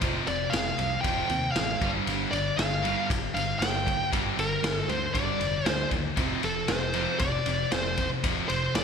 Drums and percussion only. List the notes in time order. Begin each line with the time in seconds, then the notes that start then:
0.02 kick, ride
0.27 ride
0.53 snare, ride
0.79 ride
1.04 kick, ride
1.30 ride
1.56 snare, ride
1.81 kick, ride
2.07 ride
2.33 ride
2.59 snare, ride
2.85 ride
3.10 kick, ride
3.37 ride
3.62 snare, ride
3.87 kick, ride
4.13 kick, ride
4.39 ride
4.64 snare, ride
4.89 ride
5.15 kick, ride
5.41 ride
5.66 snare, ride
5.91 kick, ride
6.17 kick, ride
6.43 ride
6.68 snare, ride
6.94 ride
7.19 kick, ride
7.46 ride
7.72 snare, ride
7.98 kick, ride
8.24 kick, ride
8.50 ride
8.75 snare, ride